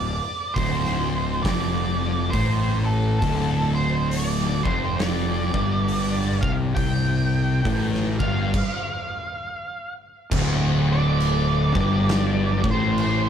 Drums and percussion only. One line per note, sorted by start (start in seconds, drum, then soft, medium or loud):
0.56 kick medium
0.56 open hi-hat medium
0.85 snare soft
1.45 kick loud
1.45 snare loud
1.45 open hi-hat medium
2.33 kick loud
2.33 open hi-hat medium
3.22 kick loud
3.22 open hi-hat medium
4.11 open hi-hat medium
4.39 snare soft
4.66 kick loud
4.99 snare loud
4.99 open hi-hat medium
5.54 kick loud
5.88 open hi-hat medium
6.43 kick loud
6.77 kick loud
6.77 open hi-hat medium
7.65 kick medium
7.65 open hi-hat medium
7.94 snare soft
8.20 kick loud
8.54 kick loud
8.54 crash loud
10.31 kick loud
10.31 crash loud
10.31 crash medium
11.20 crash medium
11.75 kick loud
12.09 snare loud
12.09 crash medium
12.64 kick loud
12.98 crash medium